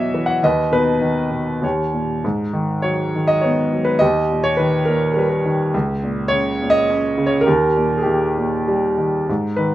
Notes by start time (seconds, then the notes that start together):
Already playing: E2 B2 E3 F#3 C#5 D#5 E5
0.14 E3
0.26 F#5
0.43 D#2 B4 D#5
0.72 B2 D#4 B4
1.01 D#3
1.31 B2
1.62 D#2 G4 C#5
1.93 A#2
2.24 G#2
2.53 D#3
2.82 F#3 C#5
3.16 D#3
3.27 D#5
3.41 B3 C#5
3.73 F#3
3.85 B4
3.99 D#2 G4 D#5
4.31 A#2
4.44 C#5
4.57 D#3 B4
4.85 A#2 A#4
5.13 G3 A#4
5.19 B4
5.29 A#4
5.46 D#3
5.74 C#2
6.03 A#2
6.28 C#3 C#5
6.62 A#2
6.70 D#5
6.90 C#4
7.18 C#3
7.26 C#5
7.41 A#4
7.46 D#2 G4
7.76 A#2
7.98 G#4
8.03 D#3 G4
8.08 A#3
8.37 A#2
8.68 G3
8.98 D#3
9.29 G#2
9.56 D#3 B4